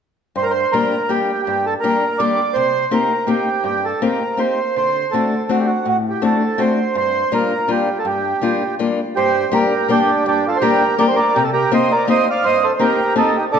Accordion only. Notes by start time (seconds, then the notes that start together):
0.37 C5
0.43 A#4
0.51 C5
0.72 A#4
1.09 G4
1.43 G4
1.66 A4
1.80 A#4
2.18 D5
2.54 C5
2.93 A#4
3.27 G4
3.65 G4
3.85 A4
4.01 A#4
4.40 C5
4.77 C5
5.12 A4
5.50 F#4
5.59 G4
5.67 F#4
5.89 F#4
6.10 G4
6.25 A4
6.61 C5
6.97 C5
7.34 A#4
7.71 G4
7.99 A4
8.06 G4
9.16 G4 C5
9.53 G4 A#4
9.91 D4 G4
10.28 D4 G4
10.48 F4 A4
10.56 C5
10.60 G4 A#4
10.99 A#4 D5
11.08 C5
11.16 A#4 D5
11.35 G4 A#4
11.43 A4
11.53 G4 A#4
11.74 C5 D#5
11.92 A#4 D5
12.10 C5 D#5
12.30 D5 F5
12.45 C5 D#5
12.64 A4 C5
12.74 C5
12.80 G4 A#4
13.17 D#4 A4
13.37 D#4 G4
13.52 A4 D5